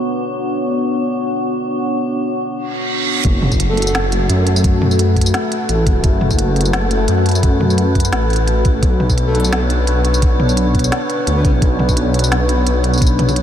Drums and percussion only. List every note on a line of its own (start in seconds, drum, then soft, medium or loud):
3.25 kick loud
3.25 closed hi-hat medium
3.42 mid tom medium
3.52 kick medium
3.52 tambourine soft
3.60 closed hi-hat medium
3.77 closed hi-hat medium
3.82 closed hi-hat medium
3.87 tambourine medium
3.95 snare loud
3.95 closed hi-hat medium
4.12 closed hi-hat medium
4.29 closed hi-hat medium
4.47 closed hi-hat medium
4.56 tambourine medium
4.64 kick loud
4.64 closed hi-hat medium
4.82 mid tom medium
4.91 tambourine soft
4.99 closed hi-hat medium
5.16 kick medium
5.16 closed hi-hat medium
5.21 closed hi-hat medium
5.26 tambourine medium
5.34 snare loud
5.34 closed hi-hat medium
5.52 closed hi-hat medium
5.69 closed hi-hat medium
5.86 kick loud
5.86 closed hi-hat medium
6.04 kick loud
6.04 closed hi-hat medium
6.21 mid tom medium
6.31 kick medium
6.31 tambourine soft
6.39 closed hi-hat medium
6.56 closed hi-hat medium
6.61 closed hi-hat medium
6.65 tambourine medium
6.73 snare loud
6.73 closed hi-hat medium
6.91 closed hi-hat medium
7.08 closed hi-hat medium
7.26 closed hi-hat medium
7.29 closed hi-hat medium
7.31 closed hi-hat soft
7.31 tambourine medium
7.43 kick loud
7.43 closed hi-hat medium
7.61 mid tom medium
7.70 tambourine soft
7.78 closed hi-hat medium
7.95 kick medium
7.95 closed hi-hat medium
8.00 closed hi-hat medium
8.05 tambourine medium
8.12 snare loud
8.12 closed hi-hat medium
8.30 closed hi-hat soft
8.33 closed hi-hat soft
8.36 closed hi-hat soft
8.48 closed hi-hat medium
8.65 kick loud
8.65 closed hi-hat medium
8.83 kick loud
8.83 closed hi-hat medium
9.00 mid tom medium
9.10 kick medium
9.10 tambourine soft
9.18 closed hi-hat medium
9.35 closed hi-hat soft
9.40 closed hi-hat medium
9.44 tambourine medium
9.52 snare loud
9.52 closed hi-hat medium
9.70 closed hi-hat medium
9.87 closed hi-hat medium
10.05 closed hi-hat medium
10.14 tambourine medium
10.22 kick loud
10.22 closed hi-hat medium
10.40 mid tom medium
10.49 tambourine soft
10.57 closed hi-hat medium
10.75 kick medium
10.75 closed hi-hat soft
10.79 closed hi-hat medium
10.84 tambourine medium
10.92 snare loud
10.92 closed hi-hat medium
11.10 closed hi-hat medium
11.27 closed hi-hat medium
11.45 kick loud
11.45 closed hi-hat medium
11.62 kick loud
11.62 closed hi-hat medium
11.79 mid tom medium
11.89 kick medium
11.89 tambourine soft
11.97 closed hi-hat medium
12.14 closed hi-hat soft
12.19 closed hi-hat medium
12.24 tambourine medium
12.32 snare loud
12.32 closed hi-hat medium
12.49 closed hi-hat medium
12.67 closed hi-hat medium
12.84 closed hi-hat medium
12.94 tambourine soft
12.98 kick loud
12.98 tambourine soft
13.02 closed hi-hat medium
13.02 tambourine soft
13.07 tambourine medium
13.19 closed hi-hat soft
13.19 mid tom medium
13.29 mid tom medium
13.29 tambourine soft
13.36 closed hi-hat medium